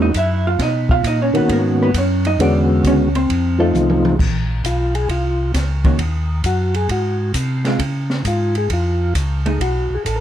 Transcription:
0.00 0.12 E2 medium
0.00 0.11 E3 medium
0.00 0.11 G#3 medium
0.00 0.11 A#3 medium
0.00 0.12 C#4 medium
0.00 0.15 D#4 medium
0.00 0.12 F#4 medium
0.00 0.14 D#5 medium
0.13 0.57 F#2 medium
0.13 0.45 E5 loud
0.13 kick soft
0.13 hi-hat pedal medium
0.13 ride medium
0.18 0.45 E4 medium
0.47 0.60 F4 medium
0.47 0.60 F5 medium
0.59 1.02 B2 medium
0.59 0.90 D#5 medium
0.59 kick soft
0.59 snare soft
0.59 ride medium
0.63 0.90 D#4 medium
0.89 1.04 F4 medium
0.89 1.04 F5 loud
0.89 kick medium
1.04 1.32 A#2 medium
1.04 1.20 D#4 medium
1.04 1.20 D#5 medium
1.04 kick soft
1.04 hi-hat pedal soft
1.04 ride medium
1.22 1.35 C#4 medium
1.22 1.35 C#5 medium
1.33 1.41 A#2 soft
1.33 1.90 D#3 medium
1.33 1.90 A#3 medium
1.33 1.91 B3 medium
1.33 1.91 C#4 medium
1.33 1.91 F#4 medium
1.33 1.50 B4 medium
1.33 ride soft
1.38 1.50 B3 medium
1.49 1.92 G#2 medium
1.49 1.80 A#4 medium
1.49 kick soft
1.49 ride medium
1.54 1.81 A#3 medium
1.83 1.95 B3 medium
1.83 1.95 B4 medium
1.94 2.37 F#2 loud
1.94 kick soft
1.94 hi-hat pedal medium
1.94 ride medium
1.98 2.25 C#4 medium
1.98 2.25 C#5 medium
2.25 2.39 D#4 medium
2.25 2.39 D#5 loud
2.25 ride soft
2.39 2.82 E2 medium
2.39 3.08 D3 medium
2.39 3.09 G#3 medium
2.39 3.09 B3 medium
2.39 3.09 C#4 medium
2.39 2.59 D4 medium
2.39 3.09 F#4 medium
2.39 2.59 D5 medium
2.39 kick soft
2.39 ride medium
2.83 3.27 C#2 medium
2.83 3.15 C#4 medium
2.83 3.15 C#5 medium
2.83 kick soft
2.83 hi-hat pedal medium
2.83 ride medium
3.15 3.57 C4 medium
3.15 3.57 C5 medium
3.15 ride soft
3.29 3.72 F2 medium
3.29 kick soft
3.29 ride medium
3.59 4.15 F3 medium
3.59 4.16 A3 medium
3.59 4.08 A3 medium
3.59 4.16 C4 medium
3.59 4.16 D#4 medium
3.59 4.16 F4 medium
3.59 4.08 A4 medium
3.74 4.17 C2 medium
3.74 hi-hat pedal medium
3.74 mid tom medium
3.90 mid tom medium
4.05 mid tom medium
4.19 4.63 A#1 medium
4.19 kick medium
4.19 crash medium
4.64 5.07 B1 medium
4.64 4.94 F4 medium
4.64 kick soft
4.64 hi-hat pedal medium
4.64 ride medium
4.95 5.09 G#4 loud
4.95 ride soft
5.09 5.52 C2 medium
5.09 5.52 F4 medium
5.09 kick soft
5.09 ride medium
5.54 5.98 C#2 medium
5.54 kick soft
5.54 snare soft
5.54 hi-hat pedal medium
5.54 ride medium
5.84 5.98 D#3 medium
5.84 5.98 A#3 medium
5.84 5.98 C#4 medium
5.84 5.98 F#4 medium
5.84 kick medium
5.84 ride soft
5.98 6.42 D#2 medium
5.98 kick soft
5.98 ride medium
6.44 6.88 F#2 medium
6.44 6.75 F#4 medium
6.44 kick soft
6.44 hi-hat pedal medium
6.44 ride medium
6.74 6.89 G#4 loud
6.74 ride soft
6.89 7.33 G#2 medium
6.89 7.32 F#4 medium
6.89 kick soft
6.89 ride medium
7.34 7.78 C3 medium
7.34 kick soft
7.34 hi-hat pedal medium
7.34 ride medium
7.65 7.79 G#3 medium
7.65 7.79 C4 medium
7.65 7.79 F4 medium
7.65 snare soft
7.65 ride soft
7.79 8.23 C#3 medium
7.79 kick soft
7.79 ride medium
8.10 snare soft
8.25 8.68 G#2 medium
8.25 8.56 F4 medium
8.25 kick soft
8.25 hi-hat pedal medium
8.25 ride medium
8.55 8.71 G#4 loud
8.55 ride soft
8.70 9.14 F2 medium
8.70 9.14 F4 medium
8.70 kick soft
8.70 ride medium
9.15 9.59 C#2 medium
9.15 kick soft
9.15 hi-hat pedal medium
9.15 ride medium
9.46 9.59 A3 medium
9.46 9.59 D#4 medium
9.46 9.59 G#4 medium
9.46 ride soft
9.60 9.89 B1 medium
9.60 9.96 F#4 medium
9.60 kick soft
9.60 ride medium
9.90 9.98 B1 soft
9.94 10.03 G#4 medium
10.05 10.20 A1 medium
10.05 10.20 A4 medium
10.05 kick soft
10.05 hi-hat pedal soft
10.05 ride medium
10.16 10.20 A#4 medium

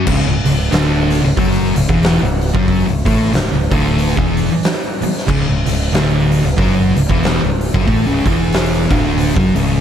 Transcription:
0.07 0.25 C#1 loud
0.07 0.25 C#2 loud
0.07 0.26 C#3 loud
0.07 kick medium
0.07 crash loud
0.26 0.44 C#1 medium
0.26 0.45 C#2 medium
0.45 0.70 C#1 medium
0.45 0.68 C#2 medium
0.45 open hi-hat medium
0.72 1.21 D1 medium
0.72 1.23 D2 medium
0.72 1.24 D3 loud
0.72 snare loud
0.72 open hi-hat medium
1.11 open hi-hat medium
1.24 1.37 C#1 medium
1.24 1.37 C#2 medium
1.37 1.73 F#1 medium
1.37 1.75 F#2 loud
1.37 1.75 F#3 loud
1.37 kick loud
1.37 open hi-hat medium
1.76 1.88 C#1 medium
1.76 1.89 C#2 medium
1.76 open hi-hat medium
1.89 2.19 E1 loud
1.89 2.21 E2 loud
1.89 2.21 E3 loud
1.89 kick loud
2.03 snare loud
2.03 open hi-hat medium
2.22 2.52 C#1 medium
2.22 2.50 C#2 medium
2.41 open hi-hat medium
2.55 2.85 F#1 loud
2.55 2.86 F#2 medium
2.55 2.86 F#3 medium
2.55 kick loud
2.68 kick loud
2.68 open hi-hat medium
2.87 3.05 C#1 medium
2.87 3.05 C#2 medium
3.06 3.31 A1 medium
3.06 3.32 A2 medium
3.06 3.32 A3 medium
3.06 kick loud
3.06 open hi-hat medium
3.33 3.51 C#1 medium
3.33 3.52 C#2 medium
3.33 snare loud
3.33 open hi-hat medium
3.53 3.70 C#1 medium
3.53 3.71 C#2 medium
3.71 4.14 D1 loud
3.71 4.16 D2 loud
3.71 4.16 D3 loud
3.71 kick loud
3.71 open hi-hat medium
3.99 open hi-hat medium
4.17 4.47 E1 medium
4.17 4.49 E2 medium
4.17 4.49 E3 loud
4.17 kick loud
4.37 open hi-hat medium
4.63 snare loud
4.63 open hi-hat medium
5.02 muted distorted electric guitar stroke medium
5.02 muted fingered electric bass stroke soft
5.02 open hi-hat medium
5.17 snare soft
5.28 5.46 C#1 loud
5.28 5.46 C#2 loud
5.28 5.47 C#3 loud
5.28 kick medium
5.28 crash medium
5.48 5.65 C#1 medium
5.48 5.67 C#2 medium
5.66 5.92 C#1 medium
5.66 5.89 C#2 medium
5.66 open hi-hat medium
5.93 6.41 D1 loud
5.93 6.44 D2 medium
5.93 6.44 D3 loud
5.93 snare loud
5.93 open hi-hat medium
6.32 open hi-hat medium
6.45 6.57 C#1 medium
6.45 6.58 C#2 medium
6.58 6.94 F#1 loud
6.58 6.95 F#2 loud
6.58 6.95 F#3 loud
6.58 kick loud
6.58 open hi-hat medium
6.96 7.09 C#1 medium
6.96 7.08 C#2 medium
6.96 open hi-hat medium
7.09 7.40 E1 loud
7.09 7.40 E2 medium
7.09 7.41 E3 loud
7.09 kick loud
7.23 snare loud
7.23 open hi-hat medium
7.42 7.73 C#1 medium
7.42 7.69 C#2 medium
7.61 open hi-hat medium
7.74 7.87 F#1 loud
7.74 7.86 F#2 medium
7.74 7.87 F#3 loud
7.74 kick loud
7.87 8.05 A1 loud
7.87 8.05 A2 loud
7.87 8.05 A3 loud
7.87 kick loud
7.87 open hi-hat medium
8.05 8.24 C#1 medium
8.05 8.24 C#2 medium
8.05 8.25 C#3 loud
8.26 8.87 E1 medium
8.26 8.90 E2 medium
8.26 8.90 E3 loud
8.26 kick loud
8.26 open hi-hat medium
8.53 snare loud
8.53 open hi-hat medium
8.90 9.33 D1 loud
8.90 9.34 D2 medium
8.90 9.35 D3 loud
8.90 kick loud
8.90 open hi-hat medium
9.18 open hi-hat medium
9.35 9.54 F#1 loud
9.35 9.54 F#2 medium
9.35 9.54 F#3 loud
9.35 kick loud
9.55 9.80 C#1 loud
9.55 9.80 C#2 medium
9.55 9.81 C#3 loud
9.55 open hi-hat medium

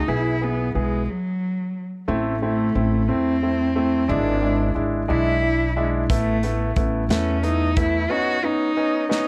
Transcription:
0.00 0.10 D#4 medium
0.08 0.71 B1 medium
0.08 0.34 B3 medium
0.08 0.34 E4 medium
0.08 0.45 E4 medium
0.08 0.34 G#4 medium
0.41 0.67 B3 medium
0.41 0.76 B3 medium
0.41 0.68 E4 medium
0.41 0.68 G#4 medium
0.75 1.06 B1 medium
0.75 1.12 G#3 medium
0.75 1.01 B3 medium
0.75 1.01 E4 soft
0.75 1.01 G#4 medium
1.11 1.85 F#3 medium
2.08 2.71 A1 medium
2.08 2.34 A3 medium
2.08 3.09 A3 medium
2.08 2.34 C4 medium
2.08 2.35 E4 medium
2.42 2.68 A3 medium
2.42 2.68 C4 medium
2.42 2.68 E4 medium
2.75 3.07 A1 medium
2.75 3.01 A3 medium
2.75 3.01 C4 medium
2.75 3.02 E4 medium
3.08 4.11 E2 medium
3.08 3.35 A3 medium
3.08 4.09 C4 medium
3.08 3.35 C4 medium
3.08 3.35 E4 medium
3.43 3.69 A3 medium
3.43 3.69 C4 soft
3.43 3.69 E4 medium
3.75 4.02 A3 medium
3.75 4.02 C4 medium
3.75 4.02 E4 medium
4.08 4.72 G#1 loud
4.08 4.35 G#3 medium
4.08 4.75 D4 medium
4.08 4.35 D4 medium
4.08 4.35 E4 medium
4.42 4.68 G#3 medium
4.42 4.68 D4 medium
4.42 4.68 E4 medium
4.75 5.07 G#1 medium
4.75 5.01 G#3 medium
4.75 5.02 D4 medium
4.75 5.02 E4 medium
5.08 6.10 B1 medium
5.08 5.35 G#3 medium
5.08 5.35 D4 medium
5.08 5.35 E4 medium
5.08 5.81 E4 loud
5.42 5.69 D4 soft
5.42 5.69 E4 medium
5.76 6.02 G#3 medium
5.76 6.03 D4 medium
5.76 6.03 E4 medium
6.10 6.72 A1 loud
6.10 6.36 A3 medium
6.10 6.73 A3 medium
6.10 6.36 B3 medium
6.10 6.36 E4 medium
6.10 kick loud
6.10 closed hi-hat medium
6.43 6.69 A3 medium
6.43 6.69 B3 medium
6.43 6.70 E4 medium
6.43 closed hi-hat soft
6.76 7.08 A1 medium
6.76 7.02 A3 medium
6.76 7.03 B3 medium
6.76 7.03 E4 medium
6.76 kick medium
6.76 closed hi-hat soft
7.09 8.06 E2 medium
7.09 7.36 A3 medium
7.09 7.36 B3 medium
7.09 7.45 C#4 medium
7.09 7.36 E4 medium
7.09 snare medium
7.09 closed hi-hat medium
7.43 7.69 A3 medium
7.43 7.69 B3 medium
7.43 7.79 D#4 medium
7.43 7.69 E4 medium
7.43 closed hi-hat soft
7.77 8.03 A3 medium
7.77 8.03 B3 medium
7.77 8.13 E4 medium
7.77 8.03 E4 medium
7.77 kick medium
7.77 closed hi-hat medium
8.10 8.36 B3 medium
8.10 8.36 C#4 medium
8.10 8.36 D#4 medium
8.10 8.46 F#4 medium
8.44 8.70 B3 medium
8.44 8.70 C#4 medium
8.44 8.70 D#4 medium
8.44 9.11 D#4 medium
8.77 9.03 B3 medium
8.77 9.03 C#4 medium
8.77 9.03 D#4 medium
9.09 9.28 B3 medium
9.09 9.28 C#4 medium
9.09 9.28 D#4 medium
9.09 snare soft

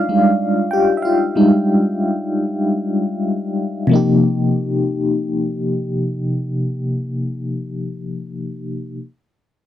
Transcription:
0.00 0.09 G3 soft
0.00 0.09 G#3 soft
0.00 3.91 D4 medium
0.00 0.09 D#4 medium
0.00 0.68 F4 medium
0.00 3.92 D5 medium
0.00 3.91 D#5 medium
0.00 0.74 F5 medium
0.09 0.37 G3 soft
0.09 0.37 G#3 soft
0.09 0.37 D#4 soft
0.71 0.97 G4 medium
0.71 0.95 G5 medium
0.97 1.03 E5 medium
1.02 3.23 F4 medium
1.02 3.22 F5 medium
1.36 2.27 G3 soft
1.36 2.27 G#3 soft
1.36 2.27 D#4 medium
3.87 7.90 C3 medium
3.87 7.91 F3 medium
3.91 7.92 A#3 medium
3.91 7.93 D#4 medium
3.95 7.94 G4 medium

